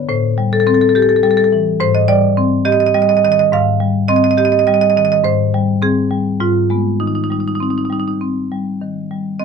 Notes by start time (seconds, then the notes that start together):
0.09 A2 C5
0.38 G3
0.53 A4
0.60 A4
0.67 C4 A4
0.74 A4
0.81 A4
0.89 A4
0.95 G4 A4
1.02 A4
1.09 A4
1.16 A4
1.23 G3 A4
1.31 A4
1.37 A4
1.44 A4
1.52 E3
1.80 G#2 C5
1.95 D#5
2.08 G3 D5
2.37 C4
2.65 G4 D#5
2.72 D#5
2.80 D#5
2.87 D#5
2.94 G3 D#5
3.02 D#5
3.09 D#5
3.17 D#5
3.24 D#3 D#5
3.32 D#5
3.39 D#5
3.53 G#2 F5
3.80 G3
4.08 C4 D#5
4.16 D#5
4.24 D#5
4.31 D#5
4.38 G4 D#5
4.45 D#5
4.52 D#5
4.59 D#5
4.67 G3 D#5
4.74 D#5
4.81 D#5
4.90 D#5
4.96 D#3 D#5
5.05 D#5
5.12 D#5
5.24 G#2 C5
5.54 G3
5.82 C4 G#4
6.11 G3
6.40 G#2 F4
6.70 G#3 B3
7.00 D#3 D#4
7.07 D#4
7.15 D#4
7.24 D#4
7.30 G3 D#4
7.40 D#4
7.48 D#4
7.55 D#4
7.60 C4 D#4
7.70 D#4
7.78 D#4
7.85 D#4
7.90 G3 D#4
8.00 D#4
8.08 D#4
8.21 C4
8.52 G3
8.81 D#3
9.11 G3
9.40 C4 D#5